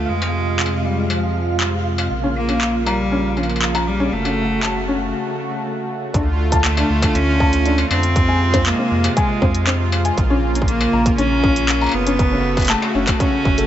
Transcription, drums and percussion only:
0.22 struck metal medium
0.60 clap loud
0.66 struck metal soft
1.10 struck metal medium
1.60 clap loud
1.60 struck metal soft
1.98 struck metal medium
2.49 struck metal soft
2.61 clap loud
2.87 struck metal medium
3.37 struck metal soft
3.43 struck metal soft
3.50 struck metal soft
3.56 struck metal soft
3.62 clap loud
3.75 struck metal medium
4.25 struck metal medium
4.63 clap loud
4.63 struck metal medium
6.14 kick loud
6.14 closed hi-hat medium
6.52 kick medium
6.52 closed hi-hat medium
6.65 clap loud
6.65 closed hi-hat medium
6.77 struck metal medium
7.02 kick medium
7.02 closed hi-hat medium
7.02 struck metal medium
7.15 closed hi-hat medium
7.40 kick loud
7.53 closed hi-hat medium
7.66 closed hi-hat medium
7.78 struck metal medium
7.91 struck metal medium
8.03 closed hi-hat medium
8.16 kick loud
8.16 closed hi-hat medium
8.54 kick medium
8.54 closed hi-hat medium
8.54 struck metal soft
8.66 clap loud
8.66 closed hi-hat medium
9.04 closed hi-hat medium
9.04 struck metal medium
9.17 kick loud
9.17 closed hi-hat medium
9.42 kick loud
9.55 closed hi-hat medium
9.67 clap loud
9.67 closed hi-hat medium
9.92 struck metal medium
10.05 closed hi-hat medium
10.18 kick loud
10.18 closed hi-hat medium
10.55 closed hi-hat medium
10.62 kick medium
10.68 closed hi-hat medium
10.81 struck metal medium
11.06 kick medium
11.06 closed hi-hat medium
11.18 closed hi-hat medium
11.44 kick loud
11.56 closed hi-hat medium
11.69 clap loud
11.69 closed hi-hat medium
11.81 struck metal soft
11.84 struck metal soft
11.86 struck metal soft
11.89 struck metal soft
11.92 struck metal soft
12.07 closed hi-hat medium
12.19 kick loud
12.19 closed hi-hat soft
12.57 kick medium
12.57 closed hi-hat soft
12.57 struck metal soft
12.60 closed hi-hat soft
12.60 struck metal soft
12.62 closed hi-hat soft
12.65 closed hi-hat medium
12.65 struck metal soft
12.67 clap loud
12.67 closed hi-hat medium
12.70 closed hi-hat medium
12.74 struck metal soft
12.78 struck metal soft
12.82 struck metal medium
13.07 kick medium
13.07 clap medium
13.07 closed hi-hat medium
13.07 struck metal medium
13.20 kick loud
13.20 closed hi-hat medium
13.45 kick loud
13.58 closed hi-hat medium

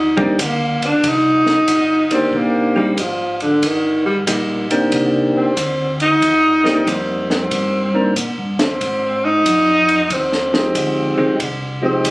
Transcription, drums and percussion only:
0.18 kick medium
0.39 kick soft
0.39 hi-hat pedal medium
0.39 ride medium
0.82 ride soft
1.04 kick soft
1.04 ride medium
1.46 snare soft
1.68 kick soft
1.68 hi-hat pedal medium
1.68 ride medium
2.11 ride medium
2.33 kick soft
2.97 kick soft
2.97 hi-hat pedal medium
2.97 ride medium
3.40 ride soft
3.63 kick soft
3.63 ride medium
4.27 kick soft
4.27 hi-hat pedal medium
4.27 ride medium
4.71 ride soft
4.92 kick soft
4.92 ride medium
5.57 kick soft
5.57 hi-hat pedal medium
5.57 ride medium
6.00 ride soft
6.22 kick soft
6.22 ride medium
6.65 snare soft
6.87 kick soft
6.87 hi-hat pedal soft
6.87 ride medium
7.30 snare soft
7.51 kick soft
7.51 ride medium
8.16 kick soft
8.16 hi-hat pedal medium
8.16 ride medium
8.59 snare medium
8.59 ride soft
8.81 kick soft
8.81 ride medium
9.46 kick soft
9.46 hi-hat pedal medium
9.46 ride medium
9.88 ride medium
10.10 kick soft
10.10 ride medium
10.32 snare soft
10.54 snare soft
10.75 kick soft
10.75 hi-hat pedal medium
10.75 ride medium
11.40 kick soft
11.40 ride medium
12.04 kick soft
12.04 hi-hat pedal medium
12.04 ride medium

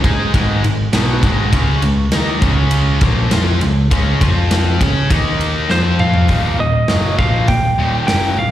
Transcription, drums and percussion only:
0.04 kick loud
0.04 ride medium
0.34 kick loud
0.34 ride medium
0.64 ride medium
0.93 snare loud
0.93 ride medium
1.23 kick loud
1.23 ride medium
1.53 kick loud
1.53 ride medium
1.82 ride medium
2.12 snare loud
2.12 ride medium
2.42 kick loud
2.42 ride medium
2.71 ride medium
3.01 kick loud
3.01 ride medium
3.31 snare loud
3.31 ride loud
3.61 ride medium
3.91 kick loud
3.91 ride medium
4.21 kick loud
4.21 ride medium
4.51 snare loud
4.51 ride loud
4.81 kick loud
4.81 ride medium
5.10 kick loud
5.10 ride medium
5.41 ride medium
5.70 snare medium
5.99 mid tom medium
6.14 floor tom medium
6.28 kick medium
6.28 open hi-hat soft
6.88 snare medium
6.88 open hi-hat soft
7.19 kick loud
7.48 kick medium
7.48 open hi-hat soft
8.08 snare loud
8.08 open hi-hat medium

